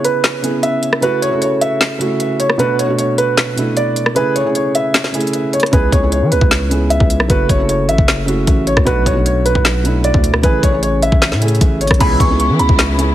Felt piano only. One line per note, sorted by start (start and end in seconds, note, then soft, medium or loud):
0.00 0.42 C#3 loud
0.00 0.43 B3 medium
0.00 0.44 E4 medium
0.00 0.44 G#4 loud
0.42 0.96 C#3 medium
0.42 0.96 B3 medium
0.42 0.96 E4 medium
0.42 0.97 G#4 medium
1.01 1.28 C#3 medium
1.01 1.28 A3 medium
1.01 1.29 E4 medium
1.01 1.29 F#4 loud
1.30 1.93 C#3 medium
1.30 1.93 A3 medium
1.30 1.93 E4 medium
1.30 1.94 A4 medium
1.99 2.52 C#3 medium
1.99 2.53 A3 medium
1.99 2.53 E4 medium
1.99 2.53 F#4 medium
2.58 2.85 B2 loud
2.58 2.85 A3 medium
2.58 2.86 D4 medium
2.58 2.86 F#4 loud
2.88 3.50 B2 medium
2.88 3.50 A3 medium
2.88 3.51 D4 medium
2.88 3.51 F#4 medium
3.56 4.09 B2 medium
3.56 4.10 A3 medium
3.56 4.10 D4 medium
3.56 4.11 E4 medium
4.15 4.42 C#3 loud
4.15 4.42 A3 medium
4.15 4.43 E4 medium
4.15 4.43 G#4 loud
4.44 5.06 C#3 medium
4.44 5.07 A3 medium
4.44 5.07 E4 medium
4.44 5.08 G#4 medium
5.12 5.66 C#3 medium
5.12 5.66 A3 medium
5.12 5.67 E4 medium
5.12 5.67 G#4 medium
5.71 5.99 C#3 loud
5.71 5.99 B3 medium
5.71 5.99 E4 medium
5.71 6.00 G#4 loud
6.01 6.63 C#3 medium
6.01 6.64 B3 medium
6.01 6.64 E4 medium
6.01 6.64 G#4 medium
6.69 7.23 C#3 medium
6.69 7.23 B3 medium
6.69 7.24 E4 medium
6.69 7.24 G#4 medium
7.28 7.55 C#3 loud
7.28 7.56 A3 medium
7.28 7.56 E4 medium
7.28 7.57 F#4 loud
7.58 8.20 C#3 medium
7.58 8.20 A3 medium
7.58 8.21 E4 medium
7.58 8.21 A4 medium
8.26 8.80 C#3 medium
8.26 8.80 A3 medium
8.26 8.80 E4 medium
8.26 8.81 F#4 medium
8.85 9.12 B2 loud
8.85 9.13 A3 medium
8.85 9.13 D4 loud
8.85 9.14 F#4 loud
9.15 9.77 B2 medium
9.15 9.78 A3 medium
9.15 9.78 D4 medium
9.15 9.78 F#4 medium
9.84 10.37 B2 medium
9.84 10.37 A3 medium
9.84 10.38 D4 medium
9.84 10.38 E4 medium
10.43 10.69 C#3 medium
10.43 10.70 A3 medium
10.43 10.70 E4 medium
10.43 10.71 G#4 loud
10.72 11.34 C#3 medium
10.72 11.34 A3 medium
10.72 11.35 E4 medium
10.72 11.35 G#4 medium
11.40 11.93 C#3 medium
11.40 11.94 A3 medium
11.40 11.94 E4 medium
11.40 11.95 G#4 medium
11.99 12.26 C#3 loud
11.99 12.27 B3 medium
11.99 12.27 E4 medium
11.99 12.27 G#4 loud
12.29 12.91 C#3 medium
12.29 12.91 B3 medium
12.29 12.92 E4 medium
12.29 12.92 G#4 medium
12.97 13.15 C#3 medium
12.97 13.15 B3 medium
12.97 13.15 E4 medium
12.97 13.15 G#4 medium